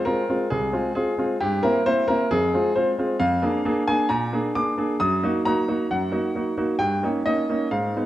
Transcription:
0.05 0.22 G#3 medium
0.05 0.23 C4 medium
0.05 0.23 F4 medium
0.05 0.51 A#4 medium
0.29 0.45 G#3 medium
0.29 0.46 C4 medium
0.29 0.46 F4 medium
0.50 0.73 C2 medium
0.50 0.92 G#4 medium
0.73 0.90 G#3 medium
0.73 0.90 C4 medium
0.73 0.90 F4 medium
0.95 1.12 G#3 soft
0.95 1.13 C4 soft
0.95 1.13 F4 medium
0.95 1.23 G#4 medium
1.18 1.35 G#3 medium
1.18 1.35 C4 medium
1.18 1.35 F4 medium
1.41 1.63 G2 medium
1.41 1.63 G4 loud
1.63 1.80 A#3 medium
1.63 1.80 C4 medium
1.63 1.80 E4 medium
1.63 1.86 A#4 loud
1.86 2.02 A#3 medium
1.86 2.03 C4 medium
1.86 2.03 E4 medium
1.86 2.06 C5 loud
2.08 2.25 A#3 medium
2.08 2.25 C4 medium
2.08 2.25 E4 medium
2.08 2.31 A#4 loud
2.31 2.53 F2 medium
2.31 2.72 G#4 loud
2.54 2.70 G#3 medium
2.54 2.70 C4 medium
2.54 2.70 F4 medium
2.75 2.92 G#3 medium
2.75 2.92 C4 medium
2.75 2.93 F4 medium
2.75 2.89 C5 medium
2.98 3.14 G#3 medium
2.98 3.15 C4 medium
2.98 3.15 F4 medium
3.20 3.42 F2 medium
3.20 3.84 F5 loud
3.42 3.59 A#3 medium
3.42 3.59 D4 medium
3.42 3.59 G#4 medium
3.65 3.82 A#3 medium
3.65 3.82 D4 medium
3.65 3.82 G#4 medium
3.87 4.04 A#3 medium
3.87 4.04 D4 medium
3.87 4.05 G#4 medium
3.87 4.11 G#5 loud
4.09 4.32 A#2 medium
4.09 4.37 A#5 loud
4.33 4.49 A#3 medium
4.33 4.50 D4 medium
4.33 4.50 G#4 medium
4.55 4.72 A#3 soft
4.55 4.72 D4 soft
4.55 4.73 G#4 medium
4.55 4.97 D6 loud
4.77 4.94 A#3 soft
4.77 4.94 D4 medium
4.77 4.95 G#4 medium
5.00 5.22 F#2 medium
5.00 5.45 D#6 loud
5.23 5.40 A#3 medium
5.23 5.40 D#4 medium
5.23 5.40 F#4 medium
5.45 5.62 A#3 medium
5.45 5.62 D#4 medium
5.45 5.63 F#4 medium
5.45 5.87 A#5 loud
5.68 5.85 A#3 medium
5.68 5.85 D#4 medium
5.68 5.85 F#4 medium
5.91 6.13 F#2 medium
5.91 6.54 F#5 medium
6.12 6.29 A#3 medium
6.12 6.29 D#4 medium
6.12 6.29 F#4 medium
6.35 6.52 A#3 soft
6.35 6.52 D#4 medium
6.35 6.52 F#4 medium
6.58 6.74 A#3 medium
6.58 6.74 D#4 medium
6.58 6.74 F#4 medium
6.79 7.02 G2 medium
6.79 7.06 G5 loud
7.03 7.20 A#3 medium
7.03 7.20 C#4 medium
7.03 7.20 D#4 medium
7.26 7.42 A#3 medium
7.26 7.43 C#4 medium
7.26 7.43 D#4 medium
7.26 7.68 D#5 loud
7.50 7.66 A#3 medium
7.50 7.66 C#4 medium
7.50 7.66 D#4 medium
7.71 7.94 G#2 medium
7.71 8.06 F5 medium
7.96 8.06 G#3 soft
7.96 8.06 B3 soft
7.96 8.06 D#4 medium

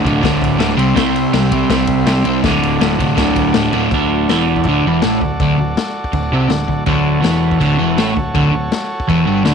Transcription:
0.00 0.73 F#4 medium
0.00 0.74 A4 medium
0.00 0.74 D5 medium
0.04 0.19 C2 loud
0.04 0.20 D2 medium
0.04 0.21 A2 medium
0.04 0.22 D3 medium
0.04 kick medium
0.04 ride medium
0.21 0.38 D1 loud
0.21 0.57 D2 loud
0.21 0.57 A2 loud
0.21 0.58 D3 loud
0.21 kick loud
0.21 snare loud
0.21 ride loud
0.42 0.56 D1 loud
0.42 kick loud
0.42 ride medium
0.58 0.73 D1 loud
0.58 0.76 D2 medium
0.58 0.76 A2 medium
0.58 0.77 D3 medium
0.58 snare loud
0.58 ride loud
0.77 0.92 C2 medium
0.77 0.94 C3 loud
0.77 0.95 G3 loud
0.77 0.96 C4 loud
0.77 2.40 G4 medium
0.77 2.40 C5 medium
0.77 2.41 E5 medium
0.77 ride medium
0.95 1.26 C2 medium
0.95 1.31 C3 medium
0.95 1.32 G3 loud
0.95 1.33 C4 loud
0.95 kick loud
0.95 snare loud
0.95 ride loud
1.16 ride medium
1.33 1.62 C2 loud
1.33 1.51 C3 medium
1.33 1.52 G3 medium
1.33 1.53 C4 medium
1.33 snare loud
1.33 ride loud
1.51 1.68 C3 medium
1.51 1.69 G3 medium
1.51 1.69 C4 medium
1.51 kick medium
1.51 ride medium
1.69 1.84 C2 medium
1.69 2.05 C3 loud
1.69 2.06 G3 loud
1.69 2.06 C4 loud
1.69 kick loud
1.69 snare loud
1.69 ride loud
1.87 2.03 C2 medium
1.87 kick loud
1.87 ride medium
2.06 2.22 C2 medium
2.06 2.24 C3 medium
2.06 2.23 G3 medium
2.06 2.24 C4 loud
2.06 snare loud
2.06 ride loud
2.24 2.40 C2 medium
2.24 2.42 C3 medium
2.24 2.42 G3 medium
2.24 2.42 C4 loud
2.24 ride medium
2.43 2.58 D1 loud
2.43 2.78 D2 medium
2.43 2.80 A2 loud
2.43 2.80 D3 loud
2.43 3.88 F#4 medium
2.43 3.89 A4 medium
2.43 3.89 D5 medium
2.43 kick loud
2.43 snare loud
2.43 ride loud
2.62 2.76 D1 medium
2.62 ride medium
2.79 2.95 D1 loud
2.79 2.97 D2 medium
2.79 2.99 A2 medium
2.79 2.99 D3 medium
2.79 snare loud
2.79 ride loud
2.99 3.14 C2 medium
2.99 3.15 D2 medium
2.99 3.15 A2 medium
2.99 3.16 D3 medium
2.99 kick medium
2.99 ride medium
3.16 3.32 D1 loud
3.16 3.53 D2 loud
3.16 3.53 A2 loud
3.16 3.54 D3 loud
3.16 kick loud
3.16 snare loud
3.16 ride loud
3.36 3.51 D1 medium
3.36 kick medium
3.36 ride medium
3.54 3.69 D1 medium
3.54 3.71 D2 medium
3.54 3.72 A2 medium
3.54 3.72 D3 loud
3.54 snare loud
3.54 ride loud
3.72 3.87 D1 medium
3.72 3.89 D2 medium
3.72 3.90 A2 loud
3.72 3.90 D3 loud
3.72 ride medium
3.91 4.25 D1 medium
3.91 4.28 D2 medium
3.91 4.29 D3 loud
3.91 6.84 F#4 medium
3.91 6.84 A4 medium
3.91 6.84 D5 medium
3.91 kick loud
3.91 crash medium
4.29 4.63 E1 loud
4.29 4.65 E2 medium
4.29 4.65 E3 loud
4.29 snare loud
4.29 crash medium
4.56 kick medium
4.64 4.82 D1 loud
4.64 4.84 D2 loud
4.64 kick loud
4.64 crash medium
4.68 4.85 D3 loud
4.85 5.01 E1 medium
4.85 5.02 E2 loud
4.85 5.03 E3 loud
5.02 5.20 A1 loud
5.02 5.20 A2 loud
5.02 5.21 A3 loud
5.02 snare loud
5.02 crash medium
5.21 5.38 D1 medium
5.21 5.36 D2 medium
5.21 kick medium
5.40 5.57 D1 loud
5.40 5.57 D2 medium
5.40 5.58 D3 loud
5.40 kick loud
5.40 crash medium
5.58 5.76 D1 medium
5.58 5.73 D2 medium
5.77 snare loud
5.77 crash medium
6.04 kick medium
6.13 6.30 D1 medium
6.13 6.28 D2 medium
6.13 kick loud
6.13 crash medium
6.32 6.49 C2 loud
6.32 6.49 C3 loud
6.32 6.50 C4 medium
6.50 6.67 D1 medium
6.50 6.65 D2 medium
6.50 snare loud
6.50 crash medium
6.68 6.86 D1 medium
6.68 6.83 D2 medium
6.68 kick medium
6.86 7.22 D1 loud
6.86 7.21 D2 loud
6.86 7.22 D3 loud
6.86 9.54 F#4 medium
6.86 9.54 A4 medium
6.86 9.54 C#5 medium
6.86 kick loud
6.86 crash medium
7.21 7.58 E1 loud
7.21 7.59 E2 medium
7.21 7.60 E3 loud
7.21 snare loud
7.21 crash medium
7.51 kick medium
7.59 7.78 D1 loud
7.59 7.77 D2 loud
7.59 7.78 D3 loud
7.59 kick loud
7.59 crash medium
7.78 7.97 E1 loud
7.78 7.97 E2 loud
7.78 7.97 E3 loud
7.97 8.15 A1 loud
7.97 8.15 A2 medium
7.97 8.16 A3 loud
7.97 snare loud
7.97 crash medium
8.16 8.34 D1 medium
8.16 8.31 D2 medium
8.16 kick medium
8.34 8.52 D1 loud
8.34 8.50 D2 loud
8.34 8.53 D3 medium
8.34 kick loud
8.34 crash medium
8.52 8.70 D1 medium
8.52 8.67 D2 medium
8.72 snare loud
8.72 crash medium
9.00 kick medium
9.08 9.26 E1 loud
9.08 9.25 E2 loud
9.08 9.27 E3 loud
9.08 kick loud
9.08 crash medium
9.26 9.45 G1 medium
9.26 9.44 G2 medium
9.26 9.45 G3 loud
9.44 9.54 D1 medium
9.44 9.54 D2 medium
9.44 9.54 D3 loud
9.44 snare loud
9.44 crash medium

